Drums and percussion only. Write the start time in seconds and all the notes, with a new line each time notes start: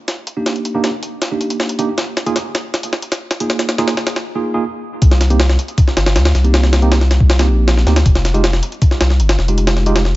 0.08 snare, closed hi-hat
0.27 closed hi-hat
0.46 snare, closed hi-hat
0.56 closed hi-hat
0.65 closed hi-hat
0.84 snare, closed hi-hat
1.03 closed hi-hat
1.22 snare, closed hi-hat
1.41 closed hi-hat
1.50 closed hi-hat
1.60 snare
1.69 closed hi-hat
1.79 closed hi-hat
1.98 snare, closed hi-hat
2.17 snare, closed hi-hat
2.27 closed hi-hat
2.36 snare, closed hi-hat
2.55 snare, closed hi-hat
2.74 snare, closed hi-hat
2.83 closed hi-hat
2.93 snare
3.02 closed hi-hat
3.12 snare, closed hi-hat
3.31 snare, closed hi-hat
3.40 closed hi-hat
3.50 snare, closed hi-hat
3.59 snare, closed hi-hat
3.69 snare, closed hi-hat
3.78 snare, closed hi-hat
3.88 snare, closed hi-hat
3.97 snare
4.07 snare, closed hi-hat
4.16 snare
5.02 kick, closed hi-hat
5.11 snare
5.21 snare, closed hi-hat
5.30 closed hi-hat
5.40 snare, closed hi-hat
5.49 snare
5.59 closed hi-hat
5.68 closed hi-hat
5.78 kick, closed hi-hat
5.88 snare
5.97 snare, closed hi-hat
6.06 snare, closed hi-hat
6.16 snare, closed hi-hat
6.25 snare, closed hi-hat
6.35 snare, closed hi-hat
6.44 closed hi-hat
6.54 snare, closed hi-hat
6.63 snare
6.73 snare, closed hi-hat
6.82 closed hi-hat
6.92 snare, closed hi-hat
7.01 snare
7.11 snare, closed hi-hat
7.20 kick
7.30 snare, closed hi-hat
7.39 snare, closed hi-hat
7.68 snare, closed hi-hat
7.78 snare
7.87 snare, closed hi-hat
7.96 snare, closed hi-hat
8.06 kick, closed hi-hat
8.15 snare
8.25 snare, closed hi-hat
8.34 closed hi-hat
8.44 snare, closed hi-hat
8.53 snare
8.63 closed hi-hat
8.72 closed hi-hat
8.82 kick, closed hi-hat
8.91 snare
9.01 snare, closed hi-hat
9.10 snare
9.20 closed hi-hat
9.29 snare, closed hi-hat
9.39 snare
9.48 closed hi-hat
9.58 closed hi-hat
9.67 snare, closed hi-hat
9.77 snare
9.86 closed hi-hat
9.96 snare, closed hi-hat
10.05 snare